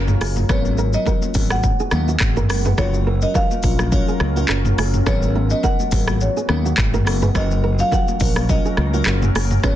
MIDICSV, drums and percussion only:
0, 0, Header, 1, 2, 480
1, 0, Start_track
1, 0, Key_signature, 6, "major"
1, 0, Tempo, 571429
1, 414, Time_signature, 4, 2, 24, 8
1, 8195, End_track
2, 0, Start_track
2, 0, Title_t, "Drums"
2, 63, Note_on_c, 9, 63, 80
2, 67, Note_on_c, 9, 45, 116
2, 68, Note_on_c, 9, 82, 51
2, 147, Note_off_c, 9, 63, 0
2, 151, Note_off_c, 9, 45, 0
2, 152, Note_off_c, 9, 82, 0
2, 176, Note_on_c, 9, 63, 54
2, 177, Note_on_c, 9, 46, 71
2, 179, Note_on_c, 9, 37, 100
2, 260, Note_off_c, 9, 63, 0
2, 261, Note_off_c, 9, 46, 0
2, 263, Note_off_c, 9, 37, 0
2, 303, Note_on_c, 9, 63, 81
2, 307, Note_on_c, 9, 82, 61
2, 309, Note_on_c, 9, 45, 95
2, 387, Note_off_c, 9, 63, 0
2, 391, Note_off_c, 9, 82, 0
2, 393, Note_off_c, 9, 45, 0
2, 414, Note_on_c, 9, 36, 123
2, 414, Note_on_c, 9, 37, 98
2, 414, Note_on_c, 9, 64, 91
2, 414, Note_on_c, 9, 82, 75
2, 498, Note_off_c, 9, 36, 0
2, 498, Note_off_c, 9, 37, 0
2, 498, Note_off_c, 9, 64, 0
2, 498, Note_off_c, 9, 82, 0
2, 546, Note_on_c, 9, 63, 78
2, 548, Note_on_c, 9, 82, 56
2, 630, Note_off_c, 9, 63, 0
2, 632, Note_off_c, 9, 82, 0
2, 653, Note_on_c, 9, 82, 56
2, 737, Note_off_c, 9, 82, 0
2, 781, Note_on_c, 9, 82, 55
2, 865, Note_off_c, 9, 82, 0
2, 886, Note_on_c, 9, 64, 83
2, 895, Note_on_c, 9, 36, 81
2, 897, Note_on_c, 9, 82, 66
2, 970, Note_off_c, 9, 64, 0
2, 979, Note_off_c, 9, 36, 0
2, 981, Note_off_c, 9, 82, 0
2, 1026, Note_on_c, 9, 63, 74
2, 1027, Note_on_c, 9, 82, 60
2, 1110, Note_off_c, 9, 63, 0
2, 1111, Note_off_c, 9, 82, 0
2, 1127, Note_on_c, 9, 46, 80
2, 1127, Note_on_c, 9, 82, 59
2, 1131, Note_on_c, 9, 64, 69
2, 1134, Note_on_c, 9, 36, 94
2, 1211, Note_off_c, 9, 46, 0
2, 1211, Note_off_c, 9, 82, 0
2, 1215, Note_off_c, 9, 64, 0
2, 1218, Note_off_c, 9, 36, 0
2, 1264, Note_on_c, 9, 37, 96
2, 1268, Note_on_c, 9, 82, 60
2, 1269, Note_on_c, 9, 63, 80
2, 1348, Note_off_c, 9, 37, 0
2, 1352, Note_off_c, 9, 82, 0
2, 1353, Note_off_c, 9, 63, 0
2, 1373, Note_on_c, 9, 82, 80
2, 1374, Note_on_c, 9, 36, 96
2, 1375, Note_on_c, 9, 64, 75
2, 1457, Note_off_c, 9, 82, 0
2, 1458, Note_off_c, 9, 36, 0
2, 1459, Note_off_c, 9, 64, 0
2, 1509, Note_on_c, 9, 82, 44
2, 1593, Note_off_c, 9, 82, 0
2, 1607, Note_on_c, 9, 82, 53
2, 1608, Note_on_c, 9, 37, 99
2, 1615, Note_on_c, 9, 63, 78
2, 1691, Note_off_c, 9, 82, 0
2, 1692, Note_off_c, 9, 37, 0
2, 1699, Note_off_c, 9, 63, 0
2, 1750, Note_on_c, 9, 82, 54
2, 1834, Note_off_c, 9, 82, 0
2, 1851, Note_on_c, 9, 37, 97
2, 1851, Note_on_c, 9, 39, 102
2, 1855, Note_on_c, 9, 36, 103
2, 1859, Note_on_c, 9, 82, 78
2, 1935, Note_off_c, 9, 37, 0
2, 1935, Note_off_c, 9, 39, 0
2, 1939, Note_off_c, 9, 36, 0
2, 1943, Note_off_c, 9, 82, 0
2, 1983, Note_on_c, 9, 63, 82
2, 1988, Note_on_c, 9, 45, 110
2, 1989, Note_on_c, 9, 82, 55
2, 2067, Note_off_c, 9, 63, 0
2, 2072, Note_off_c, 9, 45, 0
2, 2073, Note_off_c, 9, 82, 0
2, 2097, Note_on_c, 9, 46, 71
2, 2097, Note_on_c, 9, 63, 53
2, 2097, Note_on_c, 9, 82, 52
2, 2100, Note_on_c, 9, 37, 102
2, 2181, Note_off_c, 9, 46, 0
2, 2181, Note_off_c, 9, 63, 0
2, 2181, Note_off_c, 9, 82, 0
2, 2184, Note_off_c, 9, 37, 0
2, 2224, Note_on_c, 9, 63, 79
2, 2228, Note_on_c, 9, 82, 57
2, 2229, Note_on_c, 9, 45, 94
2, 2308, Note_off_c, 9, 63, 0
2, 2312, Note_off_c, 9, 82, 0
2, 2313, Note_off_c, 9, 45, 0
2, 2334, Note_on_c, 9, 36, 127
2, 2335, Note_on_c, 9, 37, 95
2, 2335, Note_on_c, 9, 64, 87
2, 2335, Note_on_c, 9, 82, 70
2, 2418, Note_off_c, 9, 36, 0
2, 2419, Note_off_c, 9, 37, 0
2, 2419, Note_off_c, 9, 64, 0
2, 2419, Note_off_c, 9, 82, 0
2, 2468, Note_on_c, 9, 63, 80
2, 2468, Note_on_c, 9, 82, 55
2, 2552, Note_off_c, 9, 63, 0
2, 2552, Note_off_c, 9, 82, 0
2, 2701, Note_on_c, 9, 82, 53
2, 2785, Note_off_c, 9, 82, 0
2, 2808, Note_on_c, 9, 64, 84
2, 2815, Note_on_c, 9, 36, 86
2, 2816, Note_on_c, 9, 82, 66
2, 2892, Note_off_c, 9, 64, 0
2, 2899, Note_off_c, 9, 36, 0
2, 2900, Note_off_c, 9, 82, 0
2, 2948, Note_on_c, 9, 82, 60
2, 2949, Note_on_c, 9, 63, 75
2, 3032, Note_off_c, 9, 82, 0
2, 3033, Note_off_c, 9, 63, 0
2, 3047, Note_on_c, 9, 46, 75
2, 3047, Note_on_c, 9, 82, 55
2, 3054, Note_on_c, 9, 36, 93
2, 3131, Note_off_c, 9, 46, 0
2, 3131, Note_off_c, 9, 82, 0
2, 3138, Note_off_c, 9, 36, 0
2, 3185, Note_on_c, 9, 37, 93
2, 3188, Note_on_c, 9, 82, 60
2, 3190, Note_on_c, 9, 63, 76
2, 3269, Note_off_c, 9, 37, 0
2, 3272, Note_off_c, 9, 82, 0
2, 3274, Note_off_c, 9, 63, 0
2, 3293, Note_on_c, 9, 82, 78
2, 3294, Note_on_c, 9, 36, 101
2, 3296, Note_on_c, 9, 64, 72
2, 3377, Note_off_c, 9, 82, 0
2, 3378, Note_off_c, 9, 36, 0
2, 3380, Note_off_c, 9, 64, 0
2, 3429, Note_on_c, 9, 82, 44
2, 3513, Note_off_c, 9, 82, 0
2, 3529, Note_on_c, 9, 37, 94
2, 3538, Note_on_c, 9, 63, 76
2, 3613, Note_off_c, 9, 37, 0
2, 3622, Note_off_c, 9, 63, 0
2, 3670, Note_on_c, 9, 82, 53
2, 3754, Note_off_c, 9, 82, 0
2, 3771, Note_on_c, 9, 37, 101
2, 3771, Note_on_c, 9, 39, 97
2, 3779, Note_on_c, 9, 82, 75
2, 3855, Note_off_c, 9, 37, 0
2, 3855, Note_off_c, 9, 39, 0
2, 3863, Note_off_c, 9, 82, 0
2, 3905, Note_on_c, 9, 63, 83
2, 3909, Note_on_c, 9, 45, 112
2, 3910, Note_on_c, 9, 82, 54
2, 3989, Note_off_c, 9, 63, 0
2, 3993, Note_off_c, 9, 45, 0
2, 3994, Note_off_c, 9, 82, 0
2, 4017, Note_on_c, 9, 46, 69
2, 4020, Note_on_c, 9, 37, 98
2, 4020, Note_on_c, 9, 63, 51
2, 4101, Note_off_c, 9, 46, 0
2, 4104, Note_off_c, 9, 37, 0
2, 4104, Note_off_c, 9, 63, 0
2, 4146, Note_on_c, 9, 63, 77
2, 4146, Note_on_c, 9, 82, 60
2, 4148, Note_on_c, 9, 45, 96
2, 4230, Note_off_c, 9, 63, 0
2, 4230, Note_off_c, 9, 82, 0
2, 4232, Note_off_c, 9, 45, 0
2, 4254, Note_on_c, 9, 36, 127
2, 4255, Note_on_c, 9, 37, 97
2, 4255, Note_on_c, 9, 82, 72
2, 4257, Note_on_c, 9, 64, 84
2, 4338, Note_off_c, 9, 36, 0
2, 4339, Note_off_c, 9, 37, 0
2, 4339, Note_off_c, 9, 82, 0
2, 4341, Note_off_c, 9, 64, 0
2, 4388, Note_on_c, 9, 82, 59
2, 4391, Note_on_c, 9, 63, 80
2, 4472, Note_off_c, 9, 82, 0
2, 4475, Note_off_c, 9, 63, 0
2, 4621, Note_on_c, 9, 82, 53
2, 4705, Note_off_c, 9, 82, 0
2, 4730, Note_on_c, 9, 64, 83
2, 4735, Note_on_c, 9, 36, 84
2, 4737, Note_on_c, 9, 82, 69
2, 4814, Note_off_c, 9, 64, 0
2, 4819, Note_off_c, 9, 36, 0
2, 4821, Note_off_c, 9, 82, 0
2, 4868, Note_on_c, 9, 82, 60
2, 4870, Note_on_c, 9, 63, 76
2, 4952, Note_off_c, 9, 82, 0
2, 4954, Note_off_c, 9, 63, 0
2, 4968, Note_on_c, 9, 46, 78
2, 4968, Note_on_c, 9, 82, 59
2, 4974, Note_on_c, 9, 36, 93
2, 5052, Note_off_c, 9, 46, 0
2, 5052, Note_off_c, 9, 82, 0
2, 5058, Note_off_c, 9, 36, 0
2, 5104, Note_on_c, 9, 37, 99
2, 5108, Note_on_c, 9, 82, 60
2, 5113, Note_on_c, 9, 63, 76
2, 5188, Note_off_c, 9, 37, 0
2, 5192, Note_off_c, 9, 82, 0
2, 5197, Note_off_c, 9, 63, 0
2, 5214, Note_on_c, 9, 82, 77
2, 5219, Note_on_c, 9, 64, 71
2, 5298, Note_off_c, 9, 82, 0
2, 5303, Note_off_c, 9, 64, 0
2, 5350, Note_on_c, 9, 82, 43
2, 5434, Note_off_c, 9, 82, 0
2, 5450, Note_on_c, 9, 37, 97
2, 5460, Note_on_c, 9, 63, 76
2, 5534, Note_off_c, 9, 37, 0
2, 5544, Note_off_c, 9, 63, 0
2, 5593, Note_on_c, 9, 82, 54
2, 5677, Note_off_c, 9, 82, 0
2, 5693, Note_on_c, 9, 37, 99
2, 5693, Note_on_c, 9, 39, 100
2, 5696, Note_on_c, 9, 36, 101
2, 5701, Note_on_c, 9, 82, 78
2, 5777, Note_off_c, 9, 37, 0
2, 5777, Note_off_c, 9, 39, 0
2, 5780, Note_off_c, 9, 36, 0
2, 5785, Note_off_c, 9, 82, 0
2, 5826, Note_on_c, 9, 63, 78
2, 5830, Note_on_c, 9, 45, 114
2, 5830, Note_on_c, 9, 82, 54
2, 5910, Note_off_c, 9, 63, 0
2, 5914, Note_off_c, 9, 45, 0
2, 5914, Note_off_c, 9, 82, 0
2, 5937, Note_on_c, 9, 46, 73
2, 5939, Note_on_c, 9, 63, 54
2, 5940, Note_on_c, 9, 37, 101
2, 6021, Note_off_c, 9, 46, 0
2, 6023, Note_off_c, 9, 63, 0
2, 6024, Note_off_c, 9, 37, 0
2, 6065, Note_on_c, 9, 63, 79
2, 6067, Note_on_c, 9, 82, 59
2, 6069, Note_on_c, 9, 45, 103
2, 6149, Note_off_c, 9, 63, 0
2, 6151, Note_off_c, 9, 82, 0
2, 6153, Note_off_c, 9, 45, 0
2, 6175, Note_on_c, 9, 36, 126
2, 6175, Note_on_c, 9, 82, 72
2, 6176, Note_on_c, 9, 37, 99
2, 6177, Note_on_c, 9, 64, 86
2, 6259, Note_off_c, 9, 36, 0
2, 6259, Note_off_c, 9, 82, 0
2, 6260, Note_off_c, 9, 37, 0
2, 6261, Note_off_c, 9, 64, 0
2, 6308, Note_on_c, 9, 82, 57
2, 6309, Note_on_c, 9, 63, 80
2, 6392, Note_off_c, 9, 82, 0
2, 6393, Note_off_c, 9, 63, 0
2, 6542, Note_on_c, 9, 82, 52
2, 6626, Note_off_c, 9, 82, 0
2, 6648, Note_on_c, 9, 64, 81
2, 6655, Note_on_c, 9, 36, 82
2, 6658, Note_on_c, 9, 82, 68
2, 6732, Note_off_c, 9, 64, 0
2, 6739, Note_off_c, 9, 36, 0
2, 6742, Note_off_c, 9, 82, 0
2, 6788, Note_on_c, 9, 82, 63
2, 6789, Note_on_c, 9, 63, 76
2, 6872, Note_off_c, 9, 82, 0
2, 6873, Note_off_c, 9, 63, 0
2, 6887, Note_on_c, 9, 46, 77
2, 6887, Note_on_c, 9, 82, 58
2, 6894, Note_on_c, 9, 36, 101
2, 6971, Note_off_c, 9, 46, 0
2, 6971, Note_off_c, 9, 82, 0
2, 6978, Note_off_c, 9, 36, 0
2, 7024, Note_on_c, 9, 37, 95
2, 7028, Note_on_c, 9, 82, 58
2, 7030, Note_on_c, 9, 63, 80
2, 7108, Note_off_c, 9, 37, 0
2, 7112, Note_off_c, 9, 82, 0
2, 7114, Note_off_c, 9, 63, 0
2, 7133, Note_on_c, 9, 82, 77
2, 7134, Note_on_c, 9, 36, 101
2, 7137, Note_on_c, 9, 64, 72
2, 7217, Note_off_c, 9, 82, 0
2, 7218, Note_off_c, 9, 36, 0
2, 7221, Note_off_c, 9, 64, 0
2, 7270, Note_on_c, 9, 82, 43
2, 7354, Note_off_c, 9, 82, 0
2, 7369, Note_on_c, 9, 37, 95
2, 7376, Note_on_c, 9, 63, 78
2, 7453, Note_off_c, 9, 37, 0
2, 7460, Note_off_c, 9, 63, 0
2, 7510, Note_on_c, 9, 82, 54
2, 7594, Note_off_c, 9, 82, 0
2, 7611, Note_on_c, 9, 37, 103
2, 7611, Note_on_c, 9, 39, 100
2, 7619, Note_on_c, 9, 82, 77
2, 7695, Note_off_c, 9, 37, 0
2, 7695, Note_off_c, 9, 39, 0
2, 7703, Note_off_c, 9, 82, 0
2, 7744, Note_on_c, 9, 63, 80
2, 7749, Note_on_c, 9, 45, 111
2, 7749, Note_on_c, 9, 82, 56
2, 7828, Note_off_c, 9, 63, 0
2, 7833, Note_off_c, 9, 45, 0
2, 7833, Note_off_c, 9, 82, 0
2, 7857, Note_on_c, 9, 46, 70
2, 7858, Note_on_c, 9, 63, 54
2, 7859, Note_on_c, 9, 37, 102
2, 7941, Note_off_c, 9, 46, 0
2, 7942, Note_off_c, 9, 63, 0
2, 7943, Note_off_c, 9, 37, 0
2, 7984, Note_on_c, 9, 63, 81
2, 7986, Note_on_c, 9, 82, 57
2, 7988, Note_on_c, 9, 45, 97
2, 8068, Note_off_c, 9, 63, 0
2, 8070, Note_off_c, 9, 82, 0
2, 8072, Note_off_c, 9, 45, 0
2, 8094, Note_on_c, 9, 36, 126
2, 8094, Note_on_c, 9, 37, 93
2, 8094, Note_on_c, 9, 82, 74
2, 8097, Note_on_c, 9, 64, 87
2, 8178, Note_off_c, 9, 36, 0
2, 8178, Note_off_c, 9, 37, 0
2, 8178, Note_off_c, 9, 82, 0
2, 8181, Note_off_c, 9, 64, 0
2, 8195, End_track
0, 0, End_of_file